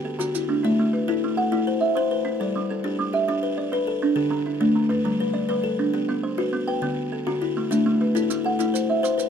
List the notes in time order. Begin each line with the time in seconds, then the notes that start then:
Already playing: G4
0.05 A4
0.19 D3 F#4, maracas
0.35 E4, maracas
0.49 A3 D4
0.63 A3 E4 E5
0.79 A3
0.93 B4
1.08 E4 A4
1.24 A3
1.37 A4 F#5
1.52 A3 E4
1.67 C5
1.81 E5
1.95 C5
2.11 B4
2.25 E4
2.40 G3 A4 D5
2.56 G3
2.70 A4
2.84 D4 G4
2.99 G3
3.13 G4 E5
3.28 G3 D4
3.43 B4
3.58 D5
3.72 B4
3.87 A4
4.02 D4
4.16 D3 G4 A4
4.31 D3
4.46 E4
4.60 A3 D4
4.75 D3
4.89 D4 B4
5.05 D3 G3
5.20 B4
5.34 D5
5.49 G3 B4
5.64 A4
5.79 D4
5.94 B3 G4
6.09 B3
6.23 C5
6.38 F#4 B4
6.53 B3
6.68 B4 G5
6.82 D3 B3
7.12 A4
7.27 D3 F#4
7.42 E4
7.57 A3
7.71 A3 D4 E5, maracas
7.86 A3
8.01 B4
8.15 E4 A4, maracas
8.30 A3, maracas
8.44 A4 F#5
8.59 A3 E4, maracas
8.74 C5, maracas
8.90 E5
9.03 C5, maracas
9.18 B4, maracas